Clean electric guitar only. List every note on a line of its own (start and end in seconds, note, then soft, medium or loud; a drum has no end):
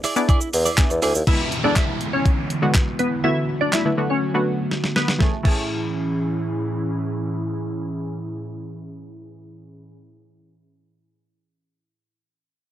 0.04 0.24 E4 medium
0.04 0.16 G#4 medium
0.04 0.15 D5 loud
0.16 muted clean electric guitar stroke soft
0.28 0.48 E4 loud
0.28 0.40 G#4 loud
0.28 0.40 D5 loud
0.41 muted clean electric guitar stroke soft
0.53 muted clean electric guitar stroke soft
0.65 0.77 E4 medium
0.65 0.77 G#4 medium
0.65 0.77 D5 medium
0.90 muted clean electric guitar stroke medium
1.02 1.22 E4 medium
1.02 1.14 G#4 medium
1.02 1.14 D5 medium
1.15 muted clean electric guitar stroke soft